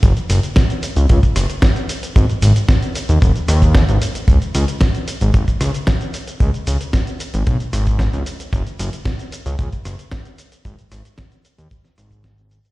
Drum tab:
HH |xxoxxxoxxxoxxxox|xxoxxxoxxxoxxxox|xxoxxxoxxxoxxxox|xxoxxxoxxxoxxxox|
SH |xxxxxxxxxxxxxxxx|xxxxxxxxxxxxxxxx|xxxxxxxxxxxxxxxx|xxxxxxxxxxxxxxxx|
SD |----o-----r-o---|----o-----r-o---|----o-----r-o---|----o-----r-o---|
BD |o---o---oo--o---|o---o---o--oo---|o---o---oo--o---|o---o---o--oo---|

HH |xxoxxxoxxxoxxxox|xxoxxxoxxxoxxxox|
SH |xxxxxxxxxxxxxxxx|xxxxxxxxxxxxxxxx|
SD |----o-----r-o---|--r-o----or-o---|
BD |o---o---oo--o---|o---o---o--oo---|